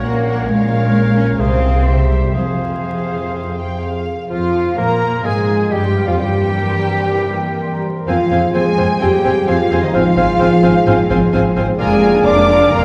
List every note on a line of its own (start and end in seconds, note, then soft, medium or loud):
0.00 0.44 A#1 medium
0.00 0.46 A#2 soft
0.00 0.49 A#2 soft
0.00 0.48 A#3 medium
0.00 0.64 C#4 soft
0.00 0.51 F#4 soft
0.00 0.25 A#4 soft
0.00 0.45 A#4 soft
0.00 0.33 A#4 soft
0.00 0.18 C#5 soft
0.00 0.25 C#5 soft
0.00 0.46 C#5 soft
0.00 0.26 F#5 soft
0.00 0.46 F#5 soft
0.19 1.08 C#5 soft
0.26 0.48 A#4 soft
0.26 0.47 C#5 medium
0.26 0.49 F#5 soft
0.34 0.94 A#4 soft
0.48 1.36 A#1 medium
0.48 1.36 A#2 medium
0.48 1.42 A#2 medium
0.48 1.17 G#3 medium
0.48 1.41 A#4 medium
0.48 1.36 A#4 medium
0.48 1.36 C#5 medium
0.48 1.42 C#5 medium
0.48 1.36 F5 medium
0.48 1.37 F5 medium
0.65 1.42 C#4 soft
0.80 1.70 F4 soft
0.95 1.24 A#4 soft
1.10 1.42 C#5 soft
1.17 1.25 C#4 medium
1.25 1.42 A#4 soft
1.39 2.34 C2 soft
1.39 1.85 C3 medium
1.39 1.85 C3 soft
1.39 2.09 C4 medium
1.39 1.86 G#4 soft
1.39 1.87 G#4 medium
1.39 1.86 C5 medium
1.39 1.85 C5 medium
1.39 1.87 F5 soft
1.39 1.86 F5 soft
1.56 2.01 C4 soft
1.71 1.89 F4 soft
1.71 1.89 G#4 soft
1.86 2.33 C3 soft
1.86 2.36 C3 soft
1.86 2.36 G4 soft
1.86 2.35 G4 soft
1.86 2.33 C5 soft
1.86 2.35 E5 soft
1.86 2.34 E5 soft
2.03 3.31 C4 soft
2.10 2.34 G3 medium
2.19 2.36 E4 soft
2.19 2.37 G4 soft
2.33 4.07 F2 soft
2.33 4.03 C3 soft
2.33 4.06 F3 soft
2.33 4.29 F3 soft
2.33 4.06 G#4 soft
2.33 4.10 G#4 soft
2.33 4.03 C5 soft
2.33 2.78 C5 soft
2.33 4.06 F5 soft
2.33 4.10 F5 soft
2.51 3.48 F4 soft
2.67 3.64 G#4 soft
2.83 3.53 C5 soft
2.83 3.15 C5 soft
3.00 3.97 F5 soft
3.17 3.80 C5 soft
3.32 4.41 C4 soft
3.49 4.53 F4 soft
3.57 3.82 G5 soft
3.65 6.22 G#4 soft
3.81 4.13 C5 soft
3.81 4.31 F5 soft
3.98 5.00 F5 soft
4.14 4.64 C5 soft
4.30 4.75 F2 medium
4.30 4.75 F3 medium
4.30 5.23 F3 soft
4.30 4.75 F3 medium
4.30 4.74 F4 medium
4.30 4.75 F4 medium
4.30 4.80 F4 medium
4.30 4.75 F4 medium
4.30 4.79 F5 medium
4.30 4.75 F5 medium
4.43 5.35 C4 soft
4.54 5.47 F4 soft
4.66 5.12 C5 soft
4.77 5.24 A#2 medium
4.77 5.24 A#3 medium
4.77 5.25 A#3 medium
4.77 5.24 A#3 medium
4.77 5.24 A#4 medium
4.77 5.26 A#4 medium
4.77 5.25 A#4 medium
4.77 5.27 A#4 medium
4.77 5.71 G#5 soft
4.77 5.25 A#5 medium
4.77 5.24 A#5 medium
4.89 5.82 C6 soft
5.13 5.58 C5 soft
5.24 5.71 G#2 soft
5.24 6.22 F3 soft
5.24 5.73 G#3 medium
5.24 5.72 G#3 medium
5.24 5.71 G#3 medium
5.24 5.73 G#4 medium
5.24 5.72 G#4 medium
5.24 5.73 G#4 medium
5.24 5.71 G#5 medium
5.36 6.42 C4 soft
5.48 6.22 F4 soft
5.60 6.06 C5 soft
5.71 6.07 G2 medium
5.71 6.07 G3 medium
5.71 6.08 G3 medium
5.71 6.07 G4 medium
5.71 6.08 G4 medium
5.71 6.09 G5 medium
5.71 6.07 G5 medium
5.71 6.22 G#5 soft
5.83 6.66 C6 soft
5.95 6.21 F5 soft
6.07 6.20 F2 medium
6.07 6.19 F3 medium
6.07 6.13 F3 soft
6.07 6.20 F3 medium
6.07 6.13 F4 medium
6.07 6.20 F4 medium
6.07 6.21 F4 medium
6.07 6.20 F4 medium
6.07 6.89 C5 soft
6.07 6.21 F5 medium
6.07 6.20 F5 medium
6.19 7.84 G2 medium
6.19 7.12 E3 soft
6.19 7.81 G3 medium
6.19 7.81 G4 medium
6.19 7.84 G4 medium
6.19 7.84 G5 medium
6.19 7.81 G5 medium
6.31 7.25 A#3 soft
6.44 7.36 C4 soft
6.55 7.01 A#4 soft
6.67 7.60 C6 soft
6.79 7.71 A#5 soft
6.91 7.83 C5 soft
7.02 7.48 A#4 soft
7.14 8.10 E3 medium
7.26 8.10 A#3 soft
7.37 8.30 C4 soft
7.49 7.95 A#4 soft
7.61 8.53 C6 medium
7.72 8.10 A#5 medium
7.84 8.77 C5 soft
7.96 8.10 A#4 soft
8.07 8.15 F2 medium
8.07 8.51 F3 medium
8.07 9.00 F3 medium
8.07 8.18 C4 medium
8.07 8.16 C4 medium
8.07 8.51 F4 medium
8.07 8.16 F4 medium
8.07 8.18 C5 medium
8.07 8.16 C5 medium
8.07 8.51 F5 medium
8.07 8.19 G#5 medium
8.07 8.16 G#5 medium
8.20 9.12 G#3 soft
8.31 8.39 F2 medium
8.31 8.39 C4 medium
8.31 9.24 C4 soft
8.31 8.42 C4 soft
8.31 8.39 F4 medium
8.31 8.42 C5 medium
8.31 8.40 C5 medium
8.31 8.42 G#5 medium
8.31 8.40 G#5 soft
8.43 8.88 G#4 medium
8.54 8.63 F2 medium
8.54 9.00 G#3 medium
8.54 8.62 C4 medium
8.54 8.65 C4 medium
8.54 8.62 F4 medium
8.54 9.00 G#4 medium
8.54 8.65 C5 medium
8.54 8.63 C5 medium
8.54 9.00 G#5 medium
8.54 8.65 G#5 medium
8.54 9.00 G#5 medium
8.54 8.63 G#5 medium
8.54 9.47 C6 medium
8.66 9.58 G#5 medium
8.77 8.86 F2 medium
8.77 8.85 C4 medium
8.77 8.88 C4 medium
8.77 8.85 F4 soft
8.77 8.88 C5 medium
8.77 9.70 C5 medium
8.77 8.86 C5 medium
8.77 8.88 G#5 medium
8.77 8.86 G#5 soft
8.89 9.35 G#4 medium
9.01 9.10 F2 medium
9.01 10.05 F3 medium
9.01 9.47 G3 medium
9.01 9.09 C4 medium
9.01 9.12 C4 medium
9.01 9.09 F4 medium
9.01 9.47 G4 medium
9.01 9.12 C5 medium
9.01 9.10 C5 medium
9.01 9.48 G5 medium
9.01 9.49 G5 medium
9.01 9.12 G#5 medium
9.01 9.10 G#5 medium
9.13 10.16 G#3 medium
9.25 9.33 F2 medium
9.25 9.35 C4 medium
9.25 9.33 C4 medium
9.25 11.81 C4 medium
9.25 9.33 F4 medium
9.25 9.33 C5 medium
9.25 9.35 C5 medium
9.25 9.33 G#5 medium
9.25 9.35 G#5 medium
9.37 9.82 G#4 soft
9.48 9.56 F2 medium
9.48 9.82 F3 medium
9.48 9.58 C4 medium
9.48 9.56 C4 medium
9.48 9.56 F4 medium
9.48 9.82 F4 medium
9.48 9.56 C5 medium
9.48 9.58 C5 medium
9.48 9.84 F5 medium
9.48 9.82 F5 medium
9.48 9.56 G#5 medium
9.48 9.59 G#5 medium
9.48 10.51 C6 medium
9.60 12.85 G#5 medium
9.71 9.79 F2 medium
9.71 9.81 C4 medium
9.71 9.79 C4 medium
9.71 9.79 F4 medium
9.71 9.81 C5 medium
9.71 10.28 C5 medium
9.71 9.80 C5 medium
9.71 9.82 G#5 medium
9.71 9.80 G#5 medium
9.82 9.94 D#3 medium
9.82 9.94 D#4 medium
9.82 10.40 G#4 soft
9.82 9.94 D#5 medium
9.93 10.01 G#1 medium
9.93 10.86 G#2 medium
9.93 11.53 F3 medium
9.93 10.04 C4 medium
9.93 10.03 C4 medium
9.93 11.56 F4 loud
9.93 10.02 F4 medium
9.93 10.04 C5 medium
9.93 10.02 C5 medium
9.93 11.53 F5 medium
9.93 10.05 F5 medium
9.93 11.53 F5 medium
9.93 10.02 G#5 medium
10.06 10.97 F3 medium
10.17 10.25 G#1 medium
10.17 11.09 G#3 medium
10.17 10.27 C4 medium
10.17 10.25 C4 medium
10.17 10.25 F4 medium
10.17 10.27 C5 medium
10.17 10.25 C5 medium
10.17 10.27 F5 medium
10.17 10.26 G#5 medium
10.29 10.74 C5 medium
10.39 10.48 G#1 medium
10.39 10.50 C4 medium
10.39 10.47 C4 medium
10.39 10.48 F4 medium
10.39 10.63 G#4 medium
10.39 10.50 C5 medium
10.39 10.48 C5 medium
10.39 10.51 F5 medium
10.39 10.49 G#5 medium
10.52 11.44 C6 medium
10.63 10.72 G#1 medium
10.63 10.74 C4 medium
10.63 10.71 C4 medium
10.63 10.71 F4 medium
10.63 10.71 C5 medium
10.63 10.74 C5 medium
10.63 10.74 F5 medium
10.63 10.71 G#5 medium
10.76 11.21 C5 medium
10.86 10.94 G#1 medium
10.86 11.81 G#2 medium
10.86 10.95 C4 medium
10.86 10.98 C4 medium
10.86 10.95 F4 medium
10.86 10.97 C5 medium
10.86 10.95 C5 medium
10.86 10.97 F5 medium
10.86 10.95 G#5 medium
10.99 11.90 F3 medium
11.10 11.18 G#1 medium
11.10 12.85 G#3 medium
11.10 11.18 C4 medium
11.10 11.21 C4 medium
11.10 11.18 F4 medium
11.10 11.21 C5 medium
11.10 11.19 C5 medium
11.10 11.20 F5 medium
11.10 11.18 G#5 medium
11.22 11.67 C5 medium
11.33 11.41 G#1 medium
11.33 11.41 C4 medium
11.33 11.44 C4 medium
11.33 11.41 F4 medium
11.33 11.56 G#4 medium
11.33 11.44 C5 medium
11.33 11.41 C5 medium
11.33 11.44 F5 medium
11.33 11.41 G#5 medium
11.45 11.81 C6 medium
11.56 11.65 G#1 medium
11.56 11.67 C4 medium
11.56 11.65 C4 medium
11.56 11.65 F4 medium
11.56 12.85 G#4 medium
11.56 11.66 C5 medium
11.56 11.65 C5 medium
11.56 11.67 F5 medium
11.56 11.64 G#5 medium
11.68 11.81 C5 medium
11.78 12.20 F1 medium
11.78 12.71 F2 medium
11.78 12.22 G#3 medium
11.78 11.90 G#3 medium
11.78 12.85 A#3 medium
11.78 11.90 F4 medium
11.78 12.22 G#4 loud
11.78 12.85 D5 medium
11.78 11.90 F5 medium
11.78 12.85 F5 medium
11.78 12.27 G#5 medium
11.78 12.23 G#5 medium
11.78 11.90 A#5 medium
11.90 12.82 F3 medium
11.90 12.02 A#3 medium
11.90 12.02 D4 medium
11.90 12.02 D5 medium
11.90 12.02 G#5 medium
12.02 12.14 G#3 medium
12.02 12.85 A#3 medium
12.02 12.14 F4 medium
12.02 12.14 F5 medium
12.02 12.14 A#5 medium
12.14 12.26 A#3 medium
12.14 12.26 D4 medium
12.14 12.48 A#4 medium
12.14 12.26 D5 medium
12.14 12.26 G#5 medium
12.25 12.67 F1 medium
12.25 12.37 G#3 medium
12.25 12.72 D4 medium
12.25 12.37 F4 medium
12.25 12.72 D5 loud
12.25 12.85 D5 medium
12.25 12.36 F5 medium
12.25 12.36 A#5 medium
12.25 12.71 D6 medium
12.38 12.49 A#3 medium
12.38 12.49 D4 medium
12.38 12.49 D5 medium
12.38 12.49 G#5 medium
12.38 12.85 A#5 medium
12.49 12.61 G#3 medium
12.49 12.61 F4 medium
12.49 12.85 A#4 medium
12.49 12.61 F5 medium
12.49 12.61 A#5 medium
12.61 12.73 A#3 medium
12.61 12.85 D4 medium
12.61 12.73 D4 medium
12.61 12.73 D5 medium
12.61 12.72 G#5 medium
12.71 12.85 F1 medium
12.71 12.85 F2 medium
12.71 12.83 G#3 medium
12.71 12.85 A#3 medium
12.71 12.83 F4 medium
12.71 12.85 A#4 loud
12.71 12.83 F5 medium
12.71 12.85 A#5 medium
12.71 12.83 A#5 medium